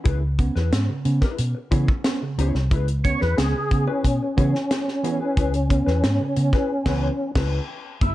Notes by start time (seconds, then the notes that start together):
0.04 C#2 C#3 E4 G#4 B4, kick, closed hi-hat
0.21 muted clean electric guitar stroke
0.39 B3 C#4, muted clean electric guitar stroke, kick, closed hi-hat
0.56 E2 E4 G#4 B4, snare
0.72 B3 C#4, snare, closed hi-hat
0.89 C#3, muted clean electric guitar stroke
1.05 C#3 B3 C#4, closed hi-hat
1.21 E4 G#4 B4, kick, snare, closed hi-hat
1.38 B2, muted clean electric guitar stroke, closed hi-hat
1.55 muted clean electric guitar stroke
1.71 C#3 E3 B3 C#4 E4 G#4 C#5, kick, closed hi-hat
1.88 muted clean electric guitar stroke, kick
2.04 B3 C#4, muted clean electric guitar stroke, snare, closed hi-hat
2.22 C#3, muted clean electric guitar stroke
2.38 C#2 B3 C#4 E4 G#4 C#5, closed hi-hat
2.55 C2, muted clean electric guitar stroke, snare
2.71 C#2 C#3 E4 G#4 B4, kick, closed hi-hat
2.88 muted clean electric guitar stroke, closed hi-hat
3.04 B3 C#4 C#5, muted clean electric guitar stroke, kick, closed hi-hat
3.21 E2 E4 G#4 B4, snare
3.37 C#2 B3 C#4 G#4, muted clean electric guitar stroke, snare, closed hi-hat
3.55 C#3, muted clean electric guitar stroke
3.71 C#3 B3 C#4, kick, closed hi-hat
3.87 C#4 E4 G#4 B4
4.04 B2, muted clean electric guitar stroke, kick, closed hi-hat
4.23 muted clean electric guitar stroke
4.37 C#3 E3 B3 C#4 E4 G#4 C#5, kick, closed hi-hat
4.55 muted clean electric guitar stroke, snare
4.71 muted clean electric guitar stroke, snare, closed hi-hat
4.88 muted clean electric guitar stroke, snare
5.04 E3 B3 C#4 E4 G#4 C#5, closed hi-hat
5.20 E4 G#4 B4
5.37 C#2 C#3 E4 G#4 B4, kick, closed hi-hat
5.54 muted clean electric guitar stroke, closed hi-hat
5.69 B3 C#4, muted clean electric guitar stroke, kick, closed hi-hat
5.86 E2 E4 G#4 B4, snare
6.03 G#2 B3 C#4, snare, closed hi-hat
6.20 C#3, muted clean electric guitar stroke
6.36 C#3 B3 C#4, closed hi-hat
6.53 E4 G#4 B4, kick, snare
6.86 C#2 E3 B3 C#4 E4 G#4 B4, kick, snare, crash
7.35 C#2 E4 G#4 B4, kick, snare, crash
8.01 F#1 F#3 A#3 E4 G#4, kick, closed hi-hat